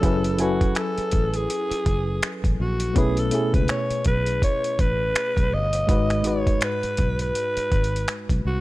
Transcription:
Already playing: alto saxophone A4
0.00 fingered electric bass F#1, fm electric piano F#3 C#4 E4 G#4 A4, kick, closed hi-hat
0.05 fm electric piano B4
0.24 closed hi-hat
0.37 fm electric piano F#3 C#4 E4 A4 G#5, closed hi-hat
0.41 alto saxophone F#4, fm electric piano B4
0.61 kick, closed hi-hat
0.75 alto saxophone A4, finger snap, closed hi-hat
0.98 muted fingered electric bass stroke, closed hi-hat
1.11 fingered electric bass A1, kick, closed hi-hat
1.34 alto saxophone G#4, closed hi-hat
1.50 closed hi-hat
1.71 muted fingered electric bass stroke, closed hi-hat
1.86 fingered electric bass F#1, kick, closed hi-hat
2.23 finger snap, closed hi-hat
2.44 fingered electric bass A1, kick, closed hi-hat
2.60 fingered electric bass A#1, alto saxophone F#4
2.80 closed hi-hat
2.93 fingered electric bass B1, fm electric piano B2 A3 C#4 E4, kick, closed hi-hat
2.98 alto saxophone G#4, fm electric piano B4
3.17 alto saxophone A4, closed hi-hat
3.30 fm electric piano B2 A3 C#4 E4, closed hi-hat
3.34 fm electric piano G#4
3.54 fingered electric bass C#2, alto saxophone B4, kick, closed hi-hat
3.68 alto saxophone C#5, finger snap, closed hi-hat
3.90 muted fingered electric bass stroke, closed hi-hat
4.05 fingered electric bass B1, alto saxophone B4, kick, closed hi-hat
4.26 closed hi-hat
4.42 alto saxophone C#5, kick, closed hi-hat
4.64 closed hi-hat
4.79 fingered electric bass A1, alto saxophone B4, kick, closed hi-hat
5.15 finger snap, closed hi-hat
5.37 fingered electric bass B1, kick, closed hi-hat
5.53 fingered electric bass G1, alto saxophone D#5
5.73 closed hi-hat
5.86 fingered electric bass G#1, fm electric piano G#2 G#3 D#4 F#4, kick, closed hi-hat
5.91 fm electric piano B4
6.10 finger snap, closed hi-hat
6.23 fm electric piano G#2 G#3 D#4 F#4, alto saxophone C#5, closed hi-hat
6.27 fm electric piano B4
6.47 kick, closed hi-hat
6.61 alto saxophone B4, finger snap, closed hi-hat
6.83 muted fingered electric bass stroke, closed hi-hat
6.97 fingered electric bass B1, kick, closed hi-hat
7.19 alto saxophone B4, closed hi-hat
7.35 closed hi-hat
7.57 muted fingered electric bass stroke, closed hi-hat
7.72 fingered electric bass G#1, kick, closed hi-hat
7.84 closed hi-hat
7.96 closed hi-hat
8.08 finger snap, closed hi-hat
8.29 fingered electric bass B1, kick, closed hi-hat
8.45 fingered electric bass C2, alto saxophone F#4

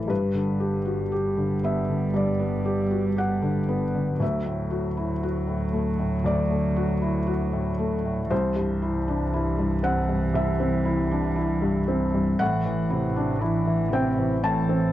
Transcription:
Already playing: double bass A1, felt piano A2 E3 A3 D4 E4 C5
0.08 double bass G1, felt piano G2 B4, cello G3
0.34 felt piano D3
0.60 felt piano G4
0.85 felt piano F#4
1.12 felt piano G4
1.37 felt piano D3
1.63 felt piano B3 E5
1.89 felt piano D3
2.14 felt piano G2 D5
2.39 felt piano B3
2.65 felt piano G4
2.91 felt piano F#4
3.16 felt piano G4 F#5
3.42 felt piano D3
3.69 felt piano B3
3.94 felt piano D3
4.19 felt piano D2 E5, double bass D2, cello F#3
4.46 felt piano A2
4.71 felt piano F#4
4.97 felt piano E4
5.23 felt piano F#4
5.47 felt piano A2
5.73 felt piano A3
5.99 felt piano A2
6.24 felt piano D2 D5
6.50 felt piano A3
6.76 felt piano F#4
7.02 felt piano E4
7.27 felt piano F#4
7.53 felt piano A2
7.79 felt piano A3
8.05 felt piano A2
8.30 double bass C2, felt piano C2 C5, cello E3
8.56 felt piano G2
8.82 felt piano E4
9.08 felt piano D4
9.33 felt piano E4
9.59 felt piano G2
9.83 felt piano C4 F#5
10.09 felt piano G2
10.34 felt piano C2 E5
10.60 felt piano C4
10.85 felt piano E4
11.11 felt piano D4
11.36 felt piano E4
11.62 felt piano G2
11.88 felt piano C4
12.14 felt piano G2
12.39 double bass A1, felt piano A2 F#5, cello E3
12.65 felt piano E3
12.90 cello C3, felt piano E4
13.16 felt piano D4
13.42 cello E3, felt piano E4
13.67 felt piano E3
13.91 cello C3, felt piano C4 G5
14.18 felt piano E3
14.43 felt piano A2 A5, cello E3
14.69 felt piano C4

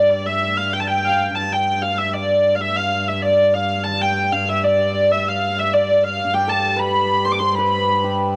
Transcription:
Already playing: viola da gamba G2
0.10 hurdy-gurdy D5
0.26 hurdy-gurdy E5
0.57 hurdy-gurdy F5
0.73 hurdy-gurdy G5
0.80 hurdy-gurdy A5
0.87 hurdy-gurdy G5
1.05 hurdy-gurdy F5
1.35 viola da gamba G2, hurdy-gurdy A5
1.52 hurdy-gurdy G5
1.82 hurdy-gurdy F5
1.98 hurdy-gurdy E5
2.13 hurdy-gurdy D5
2.55 hurdy-gurdy F5
2.61 hurdy-gurdy E5
2.76 hurdy-gurdy F5
3.08 hurdy-gurdy E5
3.22 hurdy-gurdy D5
3.54 hurdy-gurdy F5
3.84 hurdy-gurdy A5
4.01 hurdy-gurdy G5
4.32 hurdy-gurdy F5
4.49 hurdy-gurdy E5
4.64 hurdy-gurdy D5
5.11 hurdy-gurdy E5
5.29 hurdy-gurdy F5
5.59 hurdy-gurdy E5
5.74 hurdy-gurdy D5
6.04 hurdy-gurdy F5
6.31 viola da gamba G2, hammered dulcimer G4, hurdy-gurdy G5
6.47 hammered dulcimer A4, hurdy-gurdy A5
6.76 hammered dulcimer B4, hurdy-gurdy B5
7.25 hammered dulcimer C5, hurdy-gurdy C6
7.32 hurdy-gurdy D6
7.39 hammered dulcimer C5, hurdy-gurdy C6
7.54 hurdy-gurdy B5
7.58 hammered dulcimer B4
8.04 hammered dulcimer G4

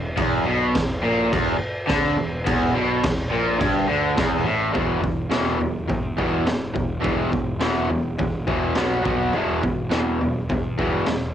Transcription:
Already playing: picked electric bass E1, overdriven electric guitar E2
0.17 picked electric bass E1, overdriven electric guitar E2, kick, crash
0.44 picked electric bass B1, overdriven electric guitar B2
0.74 picked electric bass E1, overdriven electric guitar E2, kick, snare, crash
1.02 picked electric bass A#1, overdriven electric guitar A#2
1.32 picked electric bass E1, overdriven electric guitar E2, kick, crash
1.59 muted overdriven electric guitar stroke, muted picked electric bass stroke
1.87 picked electric bass D2, overdriven electric guitar D3, kick, snare, crash
2.17 picked electric bass E1, overdriven electric guitar E2
2.45 picked electric bass E1, overdriven electric guitar E2, kick, crash
2.74 picked electric bass B1, overdriven electric guitar B2
3.04 picked electric bass E1, overdriven electric guitar E2, kick, snare, crash
3.32 picked electric bass A#1, overdriven electric guitar A#2
3.59 picked electric bass G1, overdriven electric guitar G2, kick, crash
3.87 picked electric bass D2, overdriven electric guitar D3
4.15 picked electric bass E1, overdriven electric guitar E2, kick, snare, crash
4.44 picked electric bass A1, overdriven electric guitar A2
4.73 picked electric bass E1, overdriven electric guitar E2 B2 E3, kick, floor tom
5.01 picked electric bass E1, overdriven electric guitar E2 B2, kick, floor tom
5.30 picked electric bass E1, overdriven electric guitar E2 B2 E3, snare, floor tom
5.58 picked electric bass E1, overdriven electric guitar E2 B2, floor tom
5.88 overdriven electric guitar E2 B2, picked electric bass E2, kick, floor tom
6.17 overdriven electric guitar E2 B2 E3, kick, floor tom
6.46 picked electric bass E1, overdriven electric guitar E2 B2, snare, floor tom
6.74 picked electric bass E1, overdriven electric guitar E2 B2, kick, floor tom
7.01 picked electric bass E1, overdriven electric guitar E2 B2 E3, kick, floor tom
7.32 picked electric bass E1, overdriven electric guitar E2 B2, kick, floor tom
7.60 picked electric bass E1, overdriven electric guitar E2 B2 E3, snare, floor tom
7.89 picked electric bass E1, overdriven electric guitar E2 B2, floor tom
8.18 picked electric bass E1, overdriven electric guitar E2 B2, kick, floor tom
8.47 picked electric bass E1, overdriven electric guitar E2 B2 E3, kick, floor tom
8.75 picked electric bass B1, overdriven electric guitar B2 F#3 B3, snare, floor tom
9.03 picked electric bass B1, overdriven electric guitar B2 F#3 B3, kick, floor tom
9.33 picked electric bass E1, overdriven electric guitar E2 B2 E3, floor tom
9.63 picked electric bass E1, overdriven electric guitar E2 B2, kick, floor tom
9.90 picked electric bass E1, overdriven electric guitar E2 B2 E3, snare, floor tom
10.21 picked electric bass E1, overdriven electric guitar E2 B2, floor tom
10.49 picked electric bass E2, overdriven electric guitar E2 B2, kick, floor tom
10.78 overdriven electric guitar E2 B2 E3, kick, floor tom
11.06 picked electric bass E1, overdriven electric guitar E2 B2, snare, floor tom

